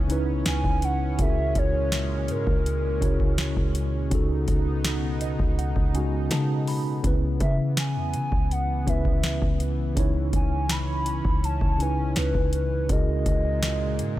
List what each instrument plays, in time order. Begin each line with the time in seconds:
Already playing: 808-style bass C#2, tine electric piano C#3 C#4 D#4 E4 C#5, analog synth pad E3 B3 C#4
0.07 tine electric piano C#3 C#4 D#4 E4, closed hi-hat
0.12 tine electric piano B4
0.46 808-style bass C#2, soft synth lead G#5, snare, closed hi-hat
0.64 808-style bass C#2, kick
0.82 soft synth lead F#5, closed hi-hat
1.17 808-style bass C#2, analog synth pad A#2 G#3, tine electric piano C#3 C#4 E4 F#4 G#4, soft synth lead E5, kick, closed hi-hat
1.22 tine electric piano A#4
1.55 808-style bass C#2, soft synth lead C#5, kick, closed hi-hat
1.92 snare, closed hi-hat
2.28 808-style bass G#2, soft synth lead A#4, closed hi-hat
2.47 808-style bass C#2, kick
2.66 closed hi-hat
3.00 808-style bass C#2, tine electric piano C#3 C#4 E4 F#4 G#4, kick, closed hi-hat
3.05 tine electric piano C#5
3.20 kick
3.38 snare, closed hi-hat
3.57 808-style bass C#2, kick
3.75 closed hi-hat
4.10 808-style bass C#2, analog synth pad B2 B3 D#4, tine electric piano C#3 C#4 D#4 F#4, kick, closed hi-hat
4.14 tine electric piano A4
4.48 808-style bass C#2, kick, closed hi-hat
4.84 snare, closed hi-hat
5.21 tine electric piano D#5, closed hi-hat
5.39 808-style bass C#2, kick
5.59 tine electric piano F#5, closed hi-hat
5.76 808-style bass C#2, kick
5.93 tine electric piano C#3 C#4 D#4 F#4 G#5, closed hi-hat
5.97 tine electric piano G#3
6.31 808-style bass C#3, tine electric piano A5, snare, closed hi-hat
6.67 tine electric piano B5, open hi-hat
7.03 808-style bass C#2, tine electric piano C#3 B3 C#4 E4, analog synth pad E3 B3, kick, closed hi-hat
7.07 tine electric piano B4
7.40 808-style bass C#3, soft synth lead E5, kick, closed hi-hat
7.77 soft synth lead G#5, snare, closed hi-hat
7.96 808-style bass E2
8.14 808-style bass C#3, closed hi-hat
8.32 808-style bass C#2, kick
8.51 soft synth lead F#5, closed hi-hat
8.85 808-style bass C#2, tine electric piano C#3 B3 C#4 E4, soft synth lead E5, kick, closed hi-hat
8.90 tine electric piano B4
9.05 kick
9.23 snare, closed hi-hat
9.42 808-style bass C#2, kick
9.60 closed hi-hat
9.95 808-style bass C#2, tine electric piano C#3 C#4 D#4 E4, analog synth pad C#4, kick, closed hi-hat
10.00 tine electric piano C#5
10.33 808-style bass C#2, soft synth lead G#5, kick, closed hi-hat
10.69 soft synth lead B5, snare, closed hi-hat
11.06 closed hi-hat
11.25 808-style bass C#2, kick
11.44 soft synth lead A5, closed hi-hat
11.61 808-style bass C#2, kick
11.78 tine electric piano C#3 C#4 D#4 E4, soft synth lead G#5, closed hi-hat
11.82 tine electric piano B4
12.16 808-style bass C#2, soft synth lead B4, snare, closed hi-hat
12.34 808-style bass C#2, kick
12.53 soft synth lead B4, closed hi-hat
12.88 808-style bass C#2, analog synth pad A#2 G#3, tine electric piano C#3 C#4 E4 F#4 G#4, soft synth lead D#5, kick, closed hi-hat
12.92 tine electric piano A#4
13.26 808-style bass C#2, kick, closed hi-hat
13.63 snare, closed hi-hat
13.99 808-style bass G#2, closed hi-hat